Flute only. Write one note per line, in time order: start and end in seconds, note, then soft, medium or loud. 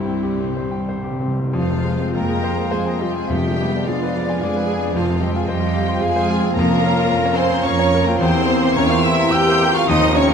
1.56 2.17 C5 medium
2.16 2.73 G5 medium
2.72 2.87 F5 medium
2.85 3.01 G5 medium
2.99 3.15 D#5 medium
3.14 3.29 F5 medium
3.27 3.88 E5 medium
3.86 4.42 D5 medium
4.41 4.95 F5 medium
4.94 5.19 C5 medium
5.20 5.34 D#5 medium
5.34 5.48 F5 medium
5.46 6.02 D#5 loud
6.01 6.55 F5 medium
6.55 7.39 F5 loud
7.37 7.67 G#5 loud
7.65 8.08 A#5 loud
8.07 8.19 G5 medium
8.20 8.50 G5 loud
8.75 8.88 A#5 loud
8.87 9.03 C#6 loud
9.02 9.33 C6 loud
9.31 9.73 E6 loud
9.73 9.90 C#6 loud
9.88 10.16 C6 loud
10.14 10.29 A#5 loud
10.30 10.34 F#5 loud